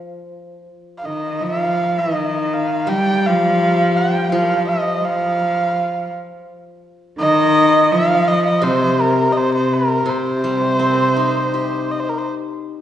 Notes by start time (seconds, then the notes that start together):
Already playing: F3
0.98 F5
1.04 D#3 D#5
1.41 F3 F5
1.98 D#3 D#5
2.54 F5
2.87 G3 G5
3.26 F3 F5
3.97 G5
4.32 F3 F5
4.68 D#5
5.05 F3 F5
7.19 D#3 D#5
7.92 F3 F5
8.28 D#5
8.47 D#5
8.62 C3 C5
9.01 A#4
9.32 C3 D#5
9.37 C5
9.55 C5
9.74 A#4
10.06 C3 C5
10.44 G3
10.79 C4
11.16 D#4
11.54 G4
11.91 D#5
12.00 C5
12.09 A#4
12.18 C5